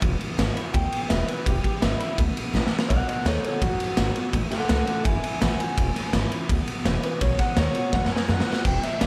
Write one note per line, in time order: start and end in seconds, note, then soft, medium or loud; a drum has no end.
0.01 0.17 E1 loud
0.01 0.70 E2 medium
0.01 kick loud
0.01 ride medium
0.21 ride medium
0.37 0.53 G#1 medium
0.37 0.55 E3 medium
0.37 0.55 G#3 medium
0.37 0.56 C#4 loud
0.37 0.54 E4 loud
0.37 snare loud
0.37 ride medium
0.55 0.74 C#4 medium
0.55 0.73 E4 medium
0.55 muted upright bass stroke medium
0.55 ride medium
0.74 0.89 D2 medium
0.74 1.42 B2 medium
0.74 1.09 G5 loud
0.74 kick loud
0.74 ride medium
0.92 ride medium
1.09 1.25 E1 medium
1.09 1.27 E3 medium
1.09 1.28 G#3 loud
1.09 1.28 C#4 medium
1.09 1.27 E4 loud
1.09 1.27 E5 medium
1.09 snare loud
1.09 ride medium
1.28 1.46 C#4 medium
1.28 1.46 E4 medium
1.28 1.45 B4 medium
1.28 muted upright bass stroke medium
1.28 ride medium
1.46 1.61 E1 loud
1.46 2.15 E2 medium
1.46 1.63 G4 medium
1.46 kick loud
1.46 ride medium
1.64 1.82 G4 medium
1.64 muted upright bass stroke medium
1.64 kick medium
1.64 ride medium
1.81 1.97 G#1 medium
1.81 1.99 E3 medium
1.81 2.00 G#3 medium
1.81 2.00 C#4 medium
1.81 1.99 E4 loud
1.81 1.99 E4 medium
1.81 snare loud
1.81 ride medium
2.00 2.18 C#4 soft
2.00 2.18 E4 loud
2.00 2.18 E4 medium
2.00 ride medium
2.18 2.33 D2 medium
2.18 2.87 B2 medium
2.18 kick loud
2.18 ride medium
2.37 ride medium
2.53 2.69 A1 loud
2.53 2.71 E3 medium
2.53 2.71 G#3 loud
2.53 2.72 C#4 medium
2.53 2.71 E4 loud
2.53 snare medium
2.67 snare medium
2.71 2.90 C#4 soft
2.71 2.90 E4 medium
2.71 muted upright bass stroke medium
2.79 snare loud
2.89 3.05 B1 loud
2.89 3.59 B2 medium
2.89 3.06 D#5 medium
2.89 3.07 F#5 loud
2.89 kick loud
2.89 ride medium
3.07 3.24 D#5 medium
3.07 3.26 F#5 loud
3.07 muted upright bass stroke medium
3.07 ride medium
3.25 3.40 D#2 medium
3.25 3.60 D#3 medium
3.25 3.60 G#3 medium
3.25 3.60 B3 medium
3.25 3.61 F#4 medium
3.25 3.43 A4 medium
3.25 3.43 C#5 medium
3.25 snare loud
3.25 ride medium
3.44 3.61 A4 medium
3.44 3.61 C#5 medium
3.44 ride medium
3.62 3.77 A1 medium
3.62 4.30 F#2 medium
3.62 4.32 F#4 loud
3.62 kick loud
3.62 ride medium
3.79 muted upright bass stroke medium
3.79 ride medium
3.97 4.12 G#1 medium
3.97 4.15 D#3 medium
3.97 4.15 G#3 medium
3.97 4.16 B3 loud
3.97 4.14 F#4 medium
3.97 snare loud
3.97 ride medium
4.15 4.33 B3 medium
4.15 4.33 F#4 medium
4.15 muted upright bass stroke medium
4.15 ride medium
4.33 4.49 A1 medium
4.33 5.02 A2 medium
4.33 kick loud
4.33 ride medium
4.51 4.68 A4 medium
4.51 4.68 F#5 medium
4.51 muted upright bass stroke medium
4.51 snare soft
4.51 ride medium
4.68 4.85 C#2 medium
4.68 5.03 E3 medium
4.68 5.04 A3 medium
4.68 5.04 C#4 medium
4.68 5.04 F#4 loud
4.68 4.85 A4 medium
4.68 4.85 F#5 medium
4.68 snare loud
4.68 ride medium
4.86 5.03 A4 medium
4.86 5.04 F#5 loud
4.86 muted upright bass stroke medium
4.86 ride medium
5.04 5.20 F#1 loud
5.04 5.73 E2 medium
5.04 5.21 E5 medium
5.04 5.22 G#5 medium
5.04 kick loud
5.04 ride medium
5.23 5.39 E5 medium
5.23 5.39 G#5 medium
5.23 muted upright bass stroke medium
5.23 ride medium
5.40 5.57 A1 loud
5.40 5.58 E3 medium
5.40 5.59 A3 medium
5.40 5.59 C#4 loud
5.40 5.58 F#4 medium
5.40 5.58 E5 medium
5.40 5.58 G#5 medium
5.40 snare loud
5.40 ride medium
5.59 5.77 C#4 soft
5.59 5.76 F#4 medium
5.59 6.29 G#5 loud
5.59 muted upright bass stroke medium
5.59 ride medium
5.77 5.93 E1 loud
5.77 6.46 E2 medium
5.77 kick loud
5.77 ride medium
5.96 snare soft
5.96 ride medium
6.13 6.28 G#1 medium
6.13 6.30 E3 medium
6.13 6.31 G#3 medium
6.13 6.31 C#4 medium
6.13 6.30 E4 loud
6.13 snare loud
6.13 ride medium
6.32 6.50 C#4 medium
6.32 6.49 E4 medium
6.32 ride medium
6.49 6.65 D2 medium
6.49 7.18 B2 medium
6.49 kick loud
6.49 ride medium
6.67 ride medium
6.84 7.00 E1 loud
6.84 7.03 E3 medium
6.84 7.03 G#3 medium
6.84 7.03 C#4 medium
6.84 7.02 E4 loud
6.84 snare loud
6.84 ride medium
7.03 7.22 C#4 medium
7.03 7.21 E4 medium
7.03 7.21 B4 medium
7.03 ride medium
7.21 7.36 B1 loud
7.21 7.90 B2 loud
7.21 7.39 C#5 medium
7.21 kick loud
7.21 ride medium
7.39 7.57 F#5 loud
7.39 kick medium
7.39 snare soft
7.39 ride medium
7.56 7.72 D#2 medium
7.56 7.74 D#3 medium
7.56 7.75 G#3 medium
7.56 7.75 B3 medium
7.56 7.73 F#4 medium
7.56 7.92 C#5 medium
7.56 snare loud
7.56 ride medium
7.74 7.93 B3 soft
7.74 7.92 F#4 medium
7.74 ride medium
7.92 8.08 A1 loud
7.92 8.61 F#2 medium
7.92 8.11 F#5 loud
7.92 kick loud
7.92 snare medium
8.05 snare medium
8.11 8.29 G#5 medium
8.11 muted upright bass stroke medium
8.16 snare medium
8.27 8.44 F#2 medium
8.27 8.46 D#3 medium
8.27 8.46 G#3 medium
8.27 8.46 B3 loud
8.27 8.45 F#4 medium
8.27 8.64 F#5 loud
8.27 snare medium
8.40 snare loud
8.46 8.65 B3 soft
8.46 8.64 F#4 medium
8.53 snare loud
8.65 8.80 E1 medium
8.65 9.07 E2 medium
8.65 8.83 G5 loud
8.65 kick loud
8.65 crash loud
8.83 9.00 E5 medium
8.83 snare soft
8.83 ride medium
9.00 9.07 G#1 medium
9.00 9.07 E3 medium
9.00 9.07 G#3 medium
9.00 9.07 C#4 medium
9.00 9.07 E4 loud
9.00 9.07 D5 medium
9.00 snare loud
9.00 ride medium